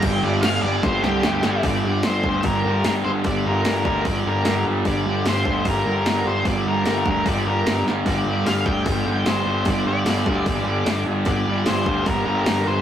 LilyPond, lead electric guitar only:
\new Staff \with { instrumentName = "Lead electric guitar" } { \time 4/4 \key g \minor \tempo 4 = 150 g''8 d''8 f''8 d''8 c''8 g'4. | d''4 c''4 bes'4 bes'8 c''8 | d''8 bes'4 bes'8 d''8 bes'4 r8 | d''4 c''4 bes'4 bes'8 c''8 |
d''8 bes'4 bes'8 d''8 bes'4 r8 | d''4 f''8 g''4. c''4 | d''8 d''2. r8 | d''4 c''4 bes'8 bes'8 bes'8 c''8 | }